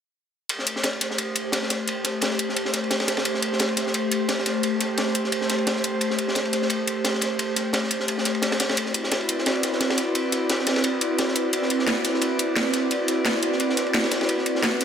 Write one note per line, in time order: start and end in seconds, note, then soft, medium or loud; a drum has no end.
0.49 8.73 A3 medium
0.49 8.73 G4 medium
0.49 8.73 C5 medium
0.49 closed hi-hat medium
0.49 ride medium
0.59 snare soft
0.67 closed hi-hat medium
0.67 ride medium
0.76 snare medium
0.83 snare loud
0.83 closed hi-hat medium
0.83 ride medium
0.93 ride soft
1.01 snare soft
1.01 closed hi-hat medium
1.01 ride medium
1.11 snare soft
1.18 closed hi-hat medium
1.18 ride medium
1.35 closed hi-hat medium
1.35 ride medium
1.52 snare loud
1.52 closed hi-hat medium
1.52 ride medium
1.62 snare soft
1.70 snare soft
1.70 closed hi-hat medium
1.70 ride medium
1.88 closed hi-hat medium
1.88 ride medium
2.04 snare soft
2.04 closed hi-hat medium
2.04 ride medium
2.21 snare loud
2.21 closed hi-hat medium
2.21 ride medium
2.30 snare soft
2.39 closed hi-hat medium
2.39 ride medium
2.49 snare soft
2.56 closed hi-hat medium
2.56 ride medium
2.65 snare medium
2.73 snare soft
2.73 closed hi-hat medium
2.73 ride medium
2.84 ride soft
2.91 snare loud
2.91 closed hi-hat medium
2.91 ride medium
3.00 snare medium
3.00 ride medium
3.07 snare medium
3.07 closed hi-hat medium
3.07 ride medium
3.17 snare loud
3.17 ride medium
3.25 closed hi-hat medium
3.25 ride medium
3.34 snare soft
3.42 closed hi-hat medium
3.42 ride medium
3.53 snare soft
3.59 snare loud
3.59 closed hi-hat medium
3.59 ride medium
3.69 ride soft
3.77 snare soft
3.77 closed hi-hat medium
3.77 ride medium
3.87 snare soft
3.94 closed hi-hat medium
3.94 ride medium
4.12 closed hi-hat medium
4.12 ride medium
4.29 snare loud
4.29 closed hi-hat medium
4.29 ride medium
4.38 snare soft
4.46 snare soft
4.46 closed hi-hat medium
4.46 ride medium
4.63 closed hi-hat medium
4.63 ride medium
4.80 snare soft
4.80 closed hi-hat medium
4.80 ride medium
4.97 snare loud
4.97 closed hi-hat medium
4.97 ride medium
5.07 snare soft
5.15 closed hi-hat medium
5.15 ride medium
5.24 snare soft
5.32 closed hi-hat medium
5.32 ride medium
5.41 snare soft
5.50 snare medium
5.50 closed hi-hat medium
5.50 ride medium
5.58 ride soft
5.67 snare loud
5.67 closed hi-hat medium
5.67 ride medium
5.76 snare soft
5.84 closed hi-hat medium
5.84 ride medium
6.01 closed hi-hat medium
6.01 ride medium
6.10 snare soft
6.19 closed hi-hat medium
6.19 ride medium
6.28 snare medium
6.35 snare loud
6.35 closed hi-hat medium
6.35 ride medium
6.45 ride soft
6.53 snare soft
6.53 closed hi-hat medium
6.53 ride medium
6.62 snare soft
6.70 closed hi-hat medium
6.70 ride medium
6.87 closed hi-hat medium
6.87 ride medium
7.04 snare loud
7.04 closed hi-hat medium
7.04 ride medium
7.13 snare soft
7.21 snare soft
7.21 closed hi-hat medium
7.21 ride medium
7.39 closed hi-hat medium
7.39 ride medium
7.56 snare soft
7.56 closed hi-hat medium
7.56 ride medium
7.73 snare loud
7.73 closed hi-hat medium
7.73 ride medium
7.83 snare soft
7.91 closed hi-hat medium
7.91 ride medium
8.00 snare soft
8.08 closed hi-hat medium
8.08 ride medium
8.18 snare soft
8.25 snare soft
8.25 closed hi-hat medium
8.25 ride medium
8.35 ride soft
8.42 snare medium
8.42 closed hi-hat medium
8.42 ride medium
8.52 snare medium
8.52 ride medium
8.60 snare loud
8.60 closed hi-hat medium
8.60 ride medium
8.69 snare loud
8.69 ride medium
8.77 14.85 C4 medium
8.77 14.85 E4 medium
8.77 14.85 F#4 medium
8.77 14.85 B4 medium
8.77 14.85 D5 medium
8.77 closed hi-hat medium
8.77 ride medium
8.86 snare soft
8.94 closed hi-hat medium
8.94 ride medium
9.03 snare medium
9.12 snare loud
9.12 closed hi-hat medium
9.12 ride medium
9.21 ride soft
9.29 closed hi-hat medium
9.29 ride medium
9.38 snare soft
9.46 snare loud
9.46 closed hi-hat medium
9.46 ride medium
9.55 ride soft
9.63 snare soft
9.63 closed hi-hat medium
9.63 ride medium
9.72 snare soft
9.81 snare loud
9.81 closed hi-hat medium
9.81 ride medium
9.90 snare loud
9.90 ride medium
9.98 snare soft
9.98 closed hi-hat medium
9.98 ride medium
10.15 closed hi-hat medium
10.15 ride medium
10.32 snare soft
10.32 closed hi-hat medium
10.32 ride medium
10.50 snare loud
10.50 closed hi-hat medium
10.50 ride medium
10.59 snare soft
10.67 snare loud
10.67 closed hi-hat medium
10.67 ride medium
10.76 snare medium
10.76 ride medium
10.84 closed hi-hat medium
10.84 ride medium
11.01 closed hi-hat medium
11.01 ride medium
11.19 snare loud
11.19 closed hi-hat medium
11.19 ride medium
11.28 snare medium
11.35 closed hi-hat medium
11.35 ride medium
11.53 closed hi-hat medium
11.53 ride medium
11.62 snare soft
11.70 closed hi-hat medium
11.70 ride medium
11.79 snare soft
11.87 snare loud
11.87 closed hi-hat medium
11.87 ride medium
11.97 ride soft
12.05 snare soft
12.05 closed hi-hat medium
12.05 ride medium
12.14 snare soft
12.21 closed hi-hat medium
12.21 ride medium
12.39 closed hi-hat medium
12.39 ride medium
12.56 snare loud
12.56 closed hi-hat medium
12.56 ride medium
12.66 snare soft
12.73 snare medium
12.73 closed hi-hat medium
12.73 ride medium
12.91 closed hi-hat medium
12.91 ride medium
13.08 snare soft
13.08 closed hi-hat medium
13.08 ride medium
13.25 snare loud
13.25 closed hi-hat medium
13.25 ride medium
13.35 snare soft
13.43 closed hi-hat medium
13.43 ride medium
13.52 snare soft
13.60 closed hi-hat medium
13.60 ride medium
13.69 snare medium
13.77 snare soft
13.77 closed hi-hat medium
13.77 ride medium
13.87 ride soft
13.94 snare loud
13.94 closed hi-hat medium
13.94 ride medium
14.04 snare loud
14.04 ride medium
14.11 snare loud
14.11 closed hi-hat medium
14.11 ride medium
14.21 snare loud
14.21 ride medium
14.29 closed hi-hat medium
14.29 ride medium
14.38 snare soft
14.46 closed hi-hat medium
14.46 ride medium
14.55 snare medium
14.63 snare loud
14.63 closed hi-hat medium
14.63 ride medium
14.73 ride soft
14.81 snare soft
14.81 closed hi-hat medium
14.81 ride medium